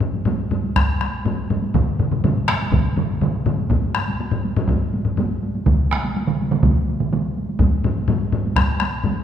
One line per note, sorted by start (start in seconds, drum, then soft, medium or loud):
0.00 taiko low-mid loud
0.14 taiko high medium
0.25 taiko low-mid loud
0.25 taiko high medium
0.51 taiko low-mid medium
0.51 taiko high medium
0.64 taiko high medium
0.76 taiko rim medium
0.76 taiko medium
0.76 taiko high medium
1.01 taiko rim medium
1.01 taiko high medium
1.25 taiko low-mid loud
1.25 taiko high medium
1.50 taiko low-mid loud
1.50 taiko high medium
1.62 taiko high medium
1.74 taiko medium
1.74 taiko low-mid loud
1.74 taiko mid loud
1.74 taiko high medium
1.99 taiko low-mid medium
1.99 taiko mid medium
1.99 taiko high medium
2.11 taiko low-mid medium
2.11 taiko mid medium
2.11 taiko high medium
2.24 taiko low-mid loud
2.24 taiko mid medium
2.24 taiko high medium
2.48 taiko rim medium
2.48 taiko high medium
2.61 taiko high medium
2.72 taiko medium
2.72 taiko low-mid loud
2.72 taiko mid medium
2.72 taiko high medium
2.97 taiko low-mid medium
2.97 taiko mid loud
2.97 taiko high medium
3.10 taiko high soft
3.21 taiko low-mid medium
3.21 taiko mid loud
3.21 taiko high medium
3.46 taiko low-mid medium
3.46 taiko mid medium
3.46 taiko high medium
3.59 taiko high soft
3.70 taiko loud
3.70 taiko low-mid medium
3.70 taiko high medium
3.95 taiko rim medium
3.95 taiko high soft
4.08 taiko high soft
4.20 taiko high medium
4.31 taiko low-mid loud
4.44 taiko high medium
4.57 taiko low-mid loud
4.57 taiko high medium
4.68 taiko loud
4.68 taiko low-mid loud
4.68 taiko high medium
4.94 taiko high medium
5.05 taiko low-mid medium
5.17 taiko low-mid medium
5.17 taiko high medium
5.42 taiko high medium
5.55 taiko high medium
5.66 taiko loud
5.66 taiko mid medium
5.66 taiko high medium
5.91 taiko rim medium
5.91 taiko high medium
6.04 taiko high medium
6.17 taiko high medium
6.27 taiko mid loud
6.41 taiko high medium
6.51 taiko mid loud
6.51 taiko high medium
6.63 taiko loud
6.63 taiko mid loud
6.63 taiko high medium
6.89 taiko high medium
7.00 taiko mid medium
7.13 taiko mid loud
7.13 taiko high medium
7.37 taiko high medium
7.49 taiko high soft
7.59 taiko loud
7.59 taiko low-mid medium
7.59 taiko high medium
7.84 taiko low-mid loud
7.84 taiko high medium
7.98 taiko high medium
8.08 taiko low-mid loud
8.08 taiko high medium
8.32 taiko low-mid loud
8.32 taiko high medium
8.46 taiko high medium
8.56 taiko rim medium
8.56 taiko loud
8.56 taiko high medium
8.80 taiko rim medium
8.80 taiko high medium
9.04 taiko low-mid loud
9.04 taiko high medium